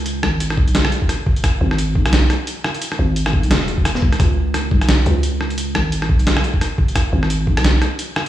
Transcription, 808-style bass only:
X:1
M:4/4
L:1/8
Q:"Swing 16ths" 1/4=174
K:C#m
V:1 name="808-style bass" clef=bass
C,, G,,,2 B,,,2 z3 | z G,,,2 B,,,2 z3 | z G,,,2 B,,, E,,,3 C,, | C,,3 B,,,2 C,,3- |
C,, G,,,2 B,,,2 z3 | z G,,,2 B,,,2 z3 |]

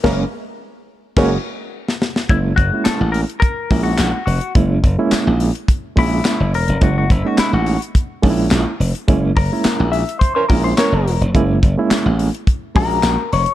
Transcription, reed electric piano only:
X:1
M:4/4
L:1/16
Q:1/4=106
K:F#mix
V:1 name="Reed electric piano"
[G,A,C]2 z6 [G,A,CF]2 z6 | [G,A,CE]2 z [G,A,CE]4 z3 [G,A,CE]3 z3 | [G,A,CE]2 z [G,A,CE]4 z3 [G,A,CE]3 z3 | [G,A,CE]2 z [G,A,CD]4 z3 [G,A,CDE]3 z3 |
[G,A,CE]2 z [G,A,CE]4 z3 [G,A,CE]3 z3 | [G,A,CE]2 z [G,A,CE]4 z3 [G,A,CF]3 z3 |]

